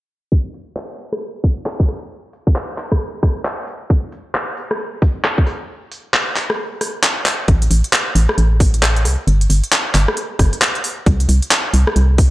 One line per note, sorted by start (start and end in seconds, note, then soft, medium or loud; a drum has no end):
0.32 kick loud
0.54 open hi-hat medium
0.77 clap loud
0.99 open hi-hat medium
1.13 cross-stick medium
1.44 kick medium
1.44 open hi-hat medium
1.66 cross-stick medium
1.66 clap loud
1.80 kick loud
1.89 cross-stick soft
1.89 open hi-hat medium
2.33 open hi-hat medium
2.47 kick loud
2.56 clap loud
2.78 clap medium
2.78 open hi-hat medium
2.92 kick medium
2.92 cross-stick medium
3.23 kick loud
3.23 cross-stick medium
3.23 open hi-hat medium
3.45 clap loud
3.68 open hi-hat medium
3.90 kick loud
4.12 open hi-hat medium
4.35 clap loud
4.57 open hi-hat medium
4.71 cross-stick medium
5.02 kick loud
5.02 open hi-hat medium
5.24 cross-stick medium
5.24 clap loud
5.38 kick loud
5.47 cross-stick soft
5.47 open hi-hat medium
5.92 open hi-hat medium
6.14 clap loud
6.36 clap medium
6.36 open hi-hat medium
6.50 cross-stick medium
6.81 cross-stick soft
6.81 open hi-hat medium
7.03 clap loud
7.26 clap medium
7.26 open hi-hat medium
7.48 7.68 A1 loud
7.48 kick loud
7.48 closed hi-hat medium
7.62 closed hi-hat medium
7.71 7.82 A1 medium
7.71 open hi-hat loud
7.84 closed hi-hat medium
7.93 clap loud
8.15 8.27 A1 loud
8.15 open hi-hat loud
8.29 cross-stick medium
8.38 9.07 A1 medium
8.38 closed hi-hat medium
8.60 kick loud
8.60 open hi-hat loud
8.74 closed hi-hat medium
8.83 cross-stick medium
8.83 clap loud
8.96 closed hi-hat medium
9.05 9.17 C2 medium
9.05 cross-stick soft
9.05 open hi-hat loud
9.27 9.47 G1 loud
9.27 closed hi-hat medium
9.41 closed hi-hat medium
9.50 9.61 G1 medium
9.50 open hi-hat loud
9.64 closed hi-hat medium
9.72 clap loud
9.94 10.06 G1 medium
9.94 clap medium
9.94 open hi-hat loud
10.08 cross-stick medium
10.17 closed hi-hat medium
10.39 10.51 G1 medium
10.39 kick loud
10.39 cross-stick medium
10.39 open hi-hat medium
10.53 closed hi-hat medium
10.62 clap loud
10.75 closed hi-hat soft
10.84 open hi-hat loud
11.06 11.26 C2 loud
11.06 kick loud
11.06 closed hi-hat medium
11.20 closed hi-hat medium
11.29 11.40 C2 medium
11.29 open hi-hat loud
11.42 closed hi-hat medium
11.51 clap loud
11.74 11.85 C2 medium
11.74 open hi-hat loud
11.87 cross-stick medium
11.96 12.30 C2 medium
11.96 closed hi-hat medium
12.18 kick loud
12.18 open hi-hat medium